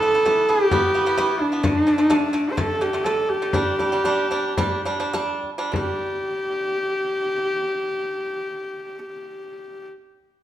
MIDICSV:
0, 0, Header, 1, 4, 480
1, 0, Start_track
1, 0, Tempo, 464396
1, 1691, Time_signature, 4, 2, 24, 8
1, 3147, Tempo, 512383
1, 4587, Tempo, 578035
1, 5547, Tempo, 613497
1, 9220, End_track
2, 0, Start_track
2, 0, Title_t, "Horsehead fiddle"
2, 0, Program_c, 0, 110
2, 0, Note_on_c, 0, 69, 109
2, 505, Note_on_c, 0, 67, 103
2, 521, Note_off_c, 0, 69, 0
2, 1456, Note_on_c, 0, 62, 97
2, 1472, Note_off_c, 0, 67, 0
2, 2597, Note_on_c, 0, 72, 64
2, 2613, Note_off_c, 0, 62, 0
2, 2673, Note_on_c, 0, 69, 94
2, 2688, Note_off_c, 0, 72, 0
2, 2900, Note_on_c, 0, 67, 84
2, 2915, Note_off_c, 0, 69, 0
2, 3143, Note_on_c, 0, 69, 91
2, 3158, Note_off_c, 0, 67, 0
2, 3377, Note_on_c, 0, 67, 92
2, 3391, Note_off_c, 0, 69, 0
2, 5054, Note_off_c, 0, 67, 0
2, 5548, Note_on_c, 0, 67, 92
2, 8785, Note_off_c, 0, 67, 0
2, 9220, End_track
3, 0, Start_track
3, 0, Title_t, "Pipa"
3, 0, Program_c, 1, 105
3, 23, Note_on_c, 1, 52, 71
3, 28, Note_on_c, 1, 59, 78
3, 120, Note_off_c, 1, 52, 0
3, 123, Note_off_c, 1, 59, 0
3, 148, Note_on_c, 1, 52, 66
3, 156, Note_on_c, 1, 59, 80
3, 242, Note_off_c, 1, 52, 0
3, 246, Note_off_c, 1, 59, 0
3, 263, Note_on_c, 1, 52, 87
3, 270, Note_on_c, 1, 59, 94
3, 454, Note_off_c, 1, 52, 0
3, 458, Note_off_c, 1, 59, 0
3, 502, Note_on_c, 1, 52, 72
3, 508, Note_on_c, 1, 59, 77
3, 692, Note_off_c, 1, 52, 0
3, 695, Note_off_c, 1, 59, 0
3, 738, Note_on_c, 1, 52, 90
3, 746, Note_on_c, 1, 59, 103
3, 929, Note_off_c, 1, 52, 0
3, 933, Note_off_c, 1, 59, 0
3, 975, Note_on_c, 1, 52, 74
3, 983, Note_on_c, 1, 59, 87
3, 1071, Note_off_c, 1, 52, 0
3, 1075, Note_off_c, 1, 59, 0
3, 1099, Note_on_c, 1, 52, 90
3, 1105, Note_on_c, 1, 59, 97
3, 1193, Note_off_c, 1, 52, 0
3, 1196, Note_off_c, 1, 59, 0
3, 1214, Note_on_c, 1, 52, 112
3, 1222, Note_on_c, 1, 59, 125
3, 1500, Note_off_c, 1, 52, 0
3, 1504, Note_off_c, 1, 59, 0
3, 1570, Note_on_c, 1, 52, 71
3, 1578, Note_on_c, 1, 59, 75
3, 1666, Note_off_c, 1, 52, 0
3, 1670, Note_off_c, 1, 59, 0
3, 1689, Note_on_c, 1, 50, 87
3, 1695, Note_on_c, 1, 57, 99
3, 1880, Note_off_c, 1, 50, 0
3, 1883, Note_off_c, 1, 57, 0
3, 1930, Note_on_c, 1, 50, 76
3, 1939, Note_on_c, 1, 57, 83
3, 2025, Note_off_c, 1, 50, 0
3, 2029, Note_off_c, 1, 57, 0
3, 2047, Note_on_c, 1, 50, 84
3, 2053, Note_on_c, 1, 57, 92
3, 2144, Note_off_c, 1, 50, 0
3, 2146, Note_off_c, 1, 57, 0
3, 2168, Note_on_c, 1, 50, 107
3, 2175, Note_on_c, 1, 57, 118
3, 2360, Note_off_c, 1, 50, 0
3, 2364, Note_off_c, 1, 57, 0
3, 2408, Note_on_c, 1, 50, 85
3, 2417, Note_on_c, 1, 57, 96
3, 2603, Note_off_c, 1, 50, 0
3, 2607, Note_off_c, 1, 57, 0
3, 2658, Note_on_c, 1, 50, 90
3, 2664, Note_on_c, 1, 57, 106
3, 2852, Note_off_c, 1, 50, 0
3, 2854, Note_off_c, 1, 57, 0
3, 2905, Note_on_c, 1, 50, 75
3, 2912, Note_on_c, 1, 57, 84
3, 3000, Note_off_c, 1, 50, 0
3, 3004, Note_off_c, 1, 57, 0
3, 3031, Note_on_c, 1, 50, 75
3, 3040, Note_on_c, 1, 57, 83
3, 3126, Note_off_c, 1, 50, 0
3, 3131, Note_off_c, 1, 57, 0
3, 3158, Note_on_c, 1, 50, 95
3, 3163, Note_on_c, 1, 57, 102
3, 3428, Note_off_c, 1, 50, 0
3, 3430, Note_off_c, 1, 57, 0
3, 3498, Note_on_c, 1, 50, 71
3, 3502, Note_on_c, 1, 57, 77
3, 3588, Note_off_c, 1, 50, 0
3, 3590, Note_off_c, 1, 57, 0
3, 3607, Note_on_c, 1, 55, 88
3, 3614, Note_on_c, 1, 62, 97
3, 3797, Note_off_c, 1, 55, 0
3, 3800, Note_off_c, 1, 62, 0
3, 3850, Note_on_c, 1, 55, 74
3, 3857, Note_on_c, 1, 62, 79
3, 3944, Note_off_c, 1, 55, 0
3, 3948, Note_off_c, 1, 62, 0
3, 3968, Note_on_c, 1, 55, 86
3, 3974, Note_on_c, 1, 62, 93
3, 4064, Note_off_c, 1, 55, 0
3, 4067, Note_off_c, 1, 62, 0
3, 4087, Note_on_c, 1, 55, 100
3, 4092, Note_on_c, 1, 62, 120
3, 4285, Note_off_c, 1, 55, 0
3, 4286, Note_off_c, 1, 62, 0
3, 4330, Note_on_c, 1, 55, 81
3, 4337, Note_on_c, 1, 62, 93
3, 4534, Note_off_c, 1, 55, 0
3, 4536, Note_off_c, 1, 62, 0
3, 4582, Note_on_c, 1, 55, 115
3, 4588, Note_on_c, 1, 62, 122
3, 4768, Note_off_c, 1, 55, 0
3, 4771, Note_off_c, 1, 62, 0
3, 4813, Note_on_c, 1, 55, 89
3, 4819, Note_on_c, 1, 62, 97
3, 4909, Note_off_c, 1, 55, 0
3, 4912, Note_off_c, 1, 62, 0
3, 4931, Note_on_c, 1, 55, 87
3, 4936, Note_on_c, 1, 62, 93
3, 5027, Note_off_c, 1, 55, 0
3, 5030, Note_off_c, 1, 62, 0
3, 5046, Note_on_c, 1, 55, 102
3, 5053, Note_on_c, 1, 62, 116
3, 5342, Note_off_c, 1, 55, 0
3, 5345, Note_off_c, 1, 62, 0
3, 5416, Note_on_c, 1, 55, 86
3, 5421, Note_on_c, 1, 62, 91
3, 5519, Note_off_c, 1, 55, 0
3, 5522, Note_off_c, 1, 62, 0
3, 5529, Note_on_c, 1, 55, 77
3, 5562, Note_on_c, 1, 62, 81
3, 8767, Note_off_c, 1, 55, 0
3, 8799, Note_off_c, 1, 62, 0
3, 9220, End_track
4, 0, Start_track
4, 0, Title_t, "Frame drum"
4, 269, Note_on_c, 9, 64, 60
4, 373, Note_off_c, 9, 64, 0
4, 505, Note_on_c, 9, 64, 24
4, 608, Note_off_c, 9, 64, 0
4, 738, Note_on_c, 9, 64, 79
4, 841, Note_off_c, 9, 64, 0
4, 983, Note_on_c, 9, 64, 24
4, 1086, Note_off_c, 9, 64, 0
4, 1217, Note_on_c, 9, 64, 57
4, 1320, Note_off_c, 9, 64, 0
4, 1451, Note_on_c, 9, 64, 22
4, 1554, Note_off_c, 9, 64, 0
4, 1692, Note_on_c, 9, 64, 80
4, 1796, Note_off_c, 9, 64, 0
4, 2175, Note_on_c, 9, 64, 61
4, 2278, Note_off_c, 9, 64, 0
4, 2413, Note_on_c, 9, 64, 25
4, 2516, Note_off_c, 9, 64, 0
4, 2663, Note_on_c, 9, 64, 77
4, 2766, Note_off_c, 9, 64, 0
4, 3149, Note_on_c, 9, 64, 58
4, 3243, Note_off_c, 9, 64, 0
4, 3380, Note_on_c, 9, 64, 21
4, 3473, Note_off_c, 9, 64, 0
4, 3603, Note_on_c, 9, 64, 78
4, 3697, Note_off_c, 9, 64, 0
4, 3844, Note_on_c, 9, 64, 51
4, 3938, Note_off_c, 9, 64, 0
4, 4080, Note_on_c, 9, 64, 57
4, 4173, Note_off_c, 9, 64, 0
4, 4338, Note_on_c, 9, 64, 26
4, 4431, Note_off_c, 9, 64, 0
4, 4580, Note_on_c, 9, 64, 75
4, 4664, Note_off_c, 9, 64, 0
4, 4813, Note_on_c, 9, 64, 25
4, 4896, Note_off_c, 9, 64, 0
4, 5048, Note_on_c, 9, 64, 57
4, 5131, Note_off_c, 9, 64, 0
4, 5294, Note_on_c, 9, 64, 22
4, 5377, Note_off_c, 9, 64, 0
4, 5545, Note_on_c, 9, 64, 79
4, 5623, Note_off_c, 9, 64, 0
4, 9220, End_track
0, 0, End_of_file